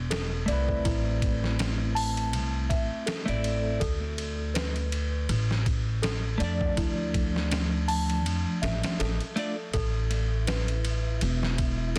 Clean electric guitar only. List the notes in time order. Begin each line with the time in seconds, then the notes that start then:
0.46 A3 C4
0.50 E4 B4
3.26 A3 C4 E4 D5
6.38 A3 D4
6.42 F3 D5
9.36 A3 D4 F4 D5